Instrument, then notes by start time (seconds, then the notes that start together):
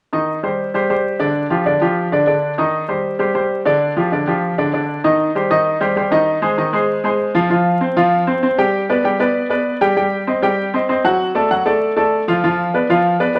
grand piano
0.13 D#3 D#4 D#5
0.43 G3 G4 C5
0.74 G3 G4 C5
0.90 G3 G4 C5
1.20 D3 D4 D5
1.50 F3 F4 G4
1.66 D3 D4 D5
1.81 F3 F4 G4
2.12 D3 D4 D5
2.27 D3 D4 D5
2.58 D#3 D#4 D#5
2.88 G3 G4 C5
3.19 G3 G4 C5
3.35 G3 G4 C5
3.65 D3 D4 D5
3.96 F3 F4 G4
4.12 D3 D4 D5
4.27 F3 F4 G4
4.58 D3 D4 D5
4.73 D3 D4 D5
5.04 D#3 D#4 D#5
5.35 G3 G4 C5
5.50 D#3 D#4 D#5
5.81 G3 G4 C5
5.96 G3 G4 C5
6.11 D#3 D#4 D#5
6.42 G#3 G#4 C5
6.58 D#3 D#4 D#5
6.73 G#3 G#4 C5
7.04 G#3 G#4 C5
7.34 F3 F4 F5
7.50 F3 F4 F5
7.81 C4 C5
7.97 F3 F4 F5
8.27 C4 C5
8.43 C4 C5
8.58 G3 G4 G5
8.89 B3 B4 D5
9.04 G3 G4 G5
9.19 B3 B4 D5
9.50 B3 B4 D5
9.81 G3 G4 G5
9.97 G3 G4 G5
10.27 C4 C5 D#5
10.42 G3 G4 G5
10.74 C4 C5 D#5
10.89 C4 C5 D#5
11.04 F#3 F#4 F#5
11.35 A3 A4 D5
11.51 F#3 F#4 F#5
11.66 A3 A4 D5
11.96 A3 A4 D5
12.28 F3 F4 F5
12.44 F3 F4 F5
12.74 B3 B4 D5
12.89 F3 F4 F5
13.20 B3 B4 D5
13.35 B3 B4 D5